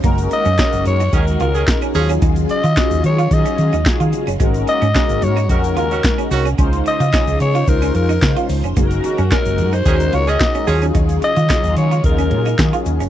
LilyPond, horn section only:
\new Staff \with { instrumentName = "Horn section" } { \time 4/4 \key ges \lydian \tempo 4 = 110 r2 <ees des' aes'>16 r8 <ees des' aes'>16 r8 <f des' aes'>8 | r1 | r2 <ees des' ges'>16 r8 <ees des' ges'>16 r8 <ees des' ges'>8 | r1 |
r2 <ees des' aes'>16 r8 <ees des' aes'>16 r8 <f des' aes'>8 | r1 | }